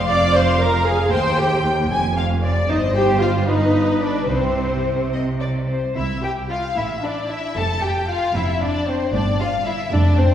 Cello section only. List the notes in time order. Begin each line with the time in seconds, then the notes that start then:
Already playing: F2
1.13 D#2
1.91 F2
2.68 G2
4.30 C3
5.96 C3
6.76 A2
7.56 F2
8.36 F2
9.15 G2
9.93 F2